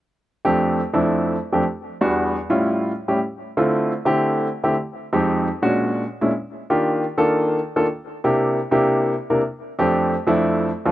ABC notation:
X:1
M:4/4
L:1/16
Q:1/4=154
K:F
V:1 name="Grand piano"
z4 [F,,A,CDG]4 z [F,,A,CDE]4 z2 [F,,A,CDG] | z4 [E,,G,=B,D_G]4 z [A,,=G,^CEF]4 z2 [A,,G,CE=G] | z4 [D,A,CEF]4 z [D,A,CEG]4 z2 [D,A,CEG] | z4 [F,,_A,C_EG]4 z [B,,A,^CD^F]4 z2 [B,,A,CD=E] |
z4 [_E,B,DFG]4 z [E,B,DFA]4 z2 [E,B,DFA] | z4 [C,B,DEG]4 z [C,B,DEG]4 z2 [C,B,DEB] | z4 [F,,A,CDG]4 z [F,,A,CDE]4 z2 [F,,A,CDF] |]